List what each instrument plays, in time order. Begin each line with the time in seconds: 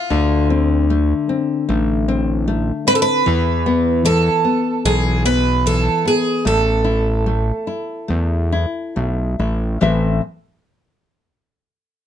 Already playing: twelve-string acoustic guitar F4
0.10 analog synth bass D2, nylon-string guitar D3
0.50 nylon-string guitar C4
0.90 nylon-string guitar A3
1.29 nylon-string guitar C4
1.69 analog synth bass A1, nylon-string guitar A3
2.08 nylon-string guitar C4
2.48 nylon-string guitar A3
2.87 nylon-string guitar C4, twelve-string acoustic guitar B4
2.95 twelve-string acoustic guitar A4
3.02 twelve-string acoustic guitar B4
3.26 analog synth bass E2, nylon-string guitar E3
3.66 nylon-string guitar B3
4.05 nylon-string guitar E3, twelve-string acoustic guitar A4
4.45 nylon-string guitar B3
4.85 analog synth bass B1, nylon-string guitar E3, twelve-string acoustic guitar G#4
5.25 nylon-string guitar B3, twelve-string acoustic guitar B4
5.66 nylon-string guitar E3, twelve-string acoustic guitar A4
6.05 nylon-string guitar B3, twelve-string acoustic guitar G#4
6.45 analog synth bass A1, nylon-string guitar A3, twelve-string acoustic guitar A4
6.84 nylon-string guitar E4
7.26 nylon-string guitar A3
7.67 nylon-string guitar E4
8.08 analog synth bass E2, nylon-string guitar A3
8.52 nylon-string guitar E4
8.96 analog synth bass B1, nylon-string guitar A3
9.39 analog synth bass A1, nylon-string guitar E4
9.81 analog synth bass A1, nylon-string guitar A2 E3 C4 A4 B4 E5